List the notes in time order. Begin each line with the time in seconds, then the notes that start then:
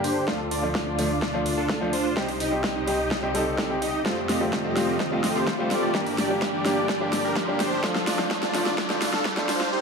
Already playing: G2 D3 A#3 G4, riser
0.04 D4 G4 C5, open hi-hat
0.27 D2 F3 A3 D4 F4 A4, kick, snare
0.51 D4 F4 D5, open hi-hat
0.62 F3 A3 D4 F4
0.75 kick, snare
0.87 D4 F4 D5
0.98 F3 A3 D4 F4, open hi-hat
1.22 D4 F4 D5, kick, snare
1.33 F3 A3 D4 F4
1.46 open hi-hat
1.58 D4 F4 A4
1.69 kick, snare
1.81 F3 A3 D4 F4
1.93 D4 F4 C5, open hi-hat
2.16 C2 C3 G3 C4 D#4 G4 C5, kick, snare
2.29 open hi-hat
2.40 D#4 G4 D#5, open hi-hat
2.51 G3 C4 D#4 G4
2.64 kick, snare
2.76 D#4 G4 D#5
2.87 G3 C4 D#4 G4, open hi-hat
3.11 D#4 G4 D#5, kick, snare
3.22 G3 C4 D#4 G4
3.34 G3 C4 D#4 A4, open hi-hat
3.58 D#4 G4 D5, kick, snare
3.70 G3 C4 D#4 G4
3.82 D#4 G4 D#5, open hi-hat
4.05 F2 G3 A3 C4 F4 G4 C5, kick, snare
4.29 A3 C4 F4 G4 D#5, snare, open hi-hat
4.40 G3 A3 C4 F4
4.53 kick, snare
4.65 A3 C4 F4 G4 D#5
4.76 G3 A3 C4 F4, snare, open hi-hat
5.00 A3 C4 F4 G4 D#5, kick, snare
5.11 G3 A3 C4 F4
5.24 snare, open hi-hat
5.35 A3 C4 F4 G4 C5
5.47 kick, snare
5.59 G3 A3 C4 F4
5.71 A3 C4 F4 G4 D5, snare, open hi-hat
5.94 G2 D3 G3 A#3 D4 G4 A#4, kick, snare
6.06 open hi-hat
6.18 D4 G4 D5, snare, open hi-hat
6.29 G3 A#3 D4 G4
6.42 kick, snare
6.54 D4 G4 D5
6.65 G3 A#3 D4 G4, snare, open hi-hat
6.89 D4 G4 D5, kick, snare
7.00 G3 A#3 D4 G4
7.13 snare, open hi-hat
7.25 D4 G4 A#4
7.36 kick, snare
7.48 G3 A#3 D4 G4
7.60 D4 G4 C5, snare, open hi-hat
7.83 D2 F3 A3 D4 F4 A4, kick, snare
7.95 snare
8.07 D4 F4 D5, snare, open hi-hat
8.19 F3 A3 D4 F4, snare
8.31 kick, snare
8.43 D4 F4 D5, snare
8.54 F3 A3 D4 F4, snare, open hi-hat
8.66 snare
8.78 D4 F4 D5, kick, snare
8.89 F3 A3 D4 F4, snare
9.02 snare, open hi-hat
9.14 D4 F4 A4, snare
9.25 kick, snare
9.37 F3 A3 D4 F4, snare
9.49 D4 F4 C5, snare, open hi-hat
9.61 snare
9.73 D#4 G4 C5